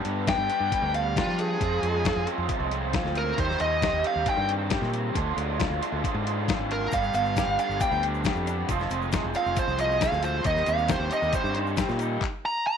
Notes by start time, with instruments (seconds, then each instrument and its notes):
Already playing: overdriven electric guitar G2 G3 B3 D4 G4
0.05 fingered electric bass G2, overdriven electric guitar B3, closed hi-hat
0.27 overdriven electric guitar G4, lead electric guitar G5, kick, snare, closed hi-hat
0.38 fingered electric bass G2
0.48 overdriven electric guitar G3 B3 D4 G4, closed hi-hat
0.60 fingered electric bass G2
0.72 overdriven electric guitar G3, kick, closed hi-hat
0.82 fingered electric bass D2
0.94 overdriven electric guitar D4, lead electric guitar F5, closed hi-hat
1.16 lead electric guitar F4, overdriven electric guitar G4, kick, snare, closed hi-hat
1.27 fingered electric bass F3, snare
1.39 overdriven electric guitar D4, lead electric guitar G#4, closed hi-hat
1.60 fingered electric bass F2, overdriven electric guitar F3 G#3 C4 F4, kick, closed hi-hat
1.82 fingered electric bass F2, overdriven electric guitar G#3, closed hi-hat
2.05 overdriven electric guitar F4, kick, snare, closed hi-hat
2.16 fingered electric bass F2
2.27 overdriven electric guitar F3 G#3 C4 F4, closed hi-hat
2.38 fingered electric bass F2
2.49 overdriven electric guitar F3, kick, closed hi-hat
2.60 fingered electric bass C2
2.71 overdriven electric guitar C4, closed hi-hat
2.93 overdriven electric guitar F4, kick, snare, closed hi-hat
3.04 fingered electric bass D2, snare
3.15 overdriven electric guitar C4, lead electric guitar A#4, closed hi-hat
3.37 fingered electric bass D#2, overdriven electric guitar D#3 G3 C4 G4, lead electric guitar C5, kick, closed hi-hat
3.51 snare
3.60 fingered electric bass D#2, overdriven electric guitar G3, lead electric guitar D#5, closed hi-hat
3.82 overdriven electric guitar G4, kick, snare, closed hi-hat
3.93 fingered electric bass D#2
4.03 overdriven electric guitar D#3 G3 C4 G4, closed hi-hat
4.07 lead electric guitar F5
4.16 fingered electric bass D#2
4.26 overdriven electric guitar D#3, lead electric guitar G5, kick, closed hi-hat
4.37 fingered electric bass G2
4.48 overdriven electric guitar C4, closed hi-hat
4.70 overdriven electric guitar G4, kick, snare, closed hi-hat
4.81 fingered electric bass A#2, snare
4.92 overdriven electric guitar C4, closed hi-hat
5.14 fingered electric bass D2, overdriven electric guitar D3 G#3 D4 F4, kick, closed hi-hat
5.36 fingered electric bass D2, overdriven electric guitar G#3, closed hi-hat
5.59 overdriven electric guitar F4, kick, snare, closed hi-hat
5.70 fingered electric bass D2
5.80 overdriven electric guitar D3 G#3 D4 F4, closed hi-hat
5.92 fingered electric bass D2
6.04 overdriven electric guitar D3, kick, closed hi-hat
6.14 fingered electric bass G#2
6.26 overdriven electric guitar D4, closed hi-hat
6.48 overdriven electric guitar F4, kick, snare, closed hi-hat
6.59 fingered electric bass G#1
6.69 overdriven electric guitar D4, lead electric guitar A#4, closed hi-hat
6.91 fingered electric bass G1, overdriven electric guitar G2 D3 G3 B3 D4, lead electric guitar F5, kick, closed hi-hat, shaker
7.03 shaker
7.14 fingered electric bass G1, overdriven electric guitar B3, lead electric guitar F5, closed hi-hat, shaker
7.25 shaker
7.36 overdriven electric guitar G4, kick, snare, closed hi-hat, shaker
7.47 fingered electric bass G1
7.58 overdriven electric guitar G2 D3 G3 B3 D4, lead electric guitar F5, closed hi-hat, shaker
7.69 fingered electric bass G1, shaker
7.80 overdriven electric guitar G3, lead electric guitar G5, kick, closed hi-hat, shaker
7.91 fingered electric bass D2, shaker
8.03 overdriven electric guitar D4, closed hi-hat
8.14 shaker
8.24 overdriven electric guitar G4, kick, snare, closed hi-hat, shaker
8.35 fingered electric bass F2, shaker
8.47 overdriven electric guitar D4, closed hi-hat, shaker
8.68 fingered electric bass F1, overdriven electric guitar F3 G#3 C4 F4, kick, closed hi-hat, shaker
8.80 snare, shaker
8.90 fingered electric bass F1, overdriven electric guitar C4, closed hi-hat, shaker
9.02 shaker
9.12 overdriven electric guitar G#4, kick, snare, closed hi-hat, shaker
9.24 fingered electric bass F1
9.34 overdriven electric guitar F3 G#3 C4 F4, lead electric guitar F5, closed hi-hat, shaker
9.46 fingered electric bass F1, shaker
9.56 overdriven electric guitar F3, lead electric guitar C5, kick, closed hi-hat, shaker
9.68 fingered electric bass C2, shaker
9.79 overdriven electric guitar F4, lead electric guitar D#5, closed hi-hat, shaker
9.91 shaker
10.01 overdriven electric guitar G#4, lead electric guitar F5, kick, snare, closed hi-hat, shaker
10.12 fingered electric bass D2, snare, shaker
10.23 overdriven electric guitar F4, lead electric guitar C5, closed hi-hat, shaker
10.44 fingered electric bass D#2, overdriven electric guitar D#3 G3 C4 G4, lead electric guitar D#5, kick, closed hi-hat, shaker
10.57 snare, shaker
10.66 fingered electric bass D#2, overdriven electric guitar C4, lead electric guitar F5, closed hi-hat, shaker
10.78 shaker
10.88 overdriven electric guitar G4, lead electric guitar C5, kick, snare, closed hi-hat, shaker
11.00 fingered electric bass D#2
11.11 overdriven electric guitar D#3 G3 C4 D#4 G4, lead electric guitar D#5, closed hi-hat, shaker
11.22 fingered electric bass D#2, shaker
11.33 overdriven electric guitar G3, lead electric guitar C5, kick, closed hi-hat, shaker
11.44 fingered electric bass G2, shaker
11.55 overdriven electric guitar D#4, closed hi-hat
11.66 shaker
11.77 overdriven electric guitar G4, kick, snare, closed hi-hat, shaker
11.89 fingered electric bass A#2, snare, shaker
11.99 overdriven electric guitar D#4, closed hi-hat, shaker
12.21 kick, clap
12.46 lead electric guitar A#5
12.67 lead electric guitar A#5